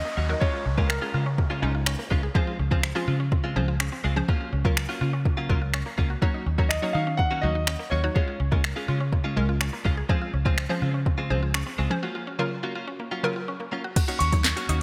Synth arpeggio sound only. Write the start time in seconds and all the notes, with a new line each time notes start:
0.05 A#3
0.17 F#3
0.29 F#4
0.41 G#4
0.54 F4
0.66 C#4
0.78 A#3
1.02 G#4
1.14 F4
1.26 C#4
1.38 A#3
1.50 G#3
1.63 G#4
1.75 F4
1.87 C#4
1.99 A#3
2.11 G#3
2.23 G#4
2.35 G#4
2.47 F4
2.59 C#4
2.71 C4
2.96 G#4
3.08 F4
3.20 C#4
3.32 C4
3.44 G#3
3.56 G#4
3.68 F4
3.80 C#4
3.92 C4
4.04 G#3
4.16 G#4
4.28 F#4
4.41 F4
4.53 C#4
4.65 A#3
4.89 F#4
5.01 F4
5.13 C#4
5.25 A#3
5.37 F#3
5.49 F#4
5.62 F4
5.74 C#4
5.86 A#3
5.98 F#3
6.10 F#4
6.22 F#4
6.34 D#4
6.46 C#4
6.59 A#3
6.83 F#4
6.95 D#4
7.07 C#4
7.19 A#3
7.31 F#3
7.43 F#4
7.55 D#4
7.67 C#4
7.79 A#3
7.92 F#3
8.04 F#4
8.16 G#4
8.28 F4
8.40 C#4
8.52 A#3
8.76 G#4
8.88 F4
9.00 C#4
9.13 A#3
9.25 G#3
9.37 G#4
9.49 F4
9.61 C#4
9.73 A#3
9.85 G#3
9.97 G#4
10.09 G#4
10.22 F4
10.34 C#4
10.46 C4
10.70 G#4
10.82 F4
10.94 C#4
11.06 C4
11.18 G#3
11.30 G#4
11.43 F4
11.55 C#4
11.67 C4
11.79 G#3
11.91 G#4
12.03 F#4
12.15 F4
12.27 C#4
12.39 A#3
12.63 F#4
12.75 F4
12.88 C#4
13.00 A#3
13.12 F#3
13.24 F#4
13.36 F4
13.48 C#4
13.60 A#3
13.72 F#3
13.84 F#4
13.96 F#4
14.08 D#4
14.21 C#4
14.33 A#3
14.57 F#4
14.69 D#4